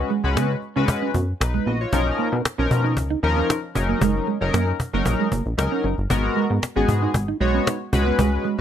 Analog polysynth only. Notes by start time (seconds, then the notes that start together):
Already playing: C#4 F#4 B4
0.24 G#3 C#4 F#4 B4
0.76 G#3 C#4 F#4 B4
1.41 D#4 B4
1.67 F#4 D#5
1.81 F4 C#5
1.92 F3 C#4 D#4 A#4
2.58 F3 C#4 D#4 A#4
3.23 F3 C#4 D#4 A#4
3.75 F#3 C#4 D#4 A#4
4.41 F#3 C#4 D#4 A#4
4.93 F#3 C#4 D#4 A#4
5.57 F#3 C#4 D#4 A#4
6.10 G#3 B3 F#4 A#4
6.76 G#3 B3 F#4 G#4
7.40 G#3 B3 F#4 C#5
7.92 G#3 C#4 F#4 B4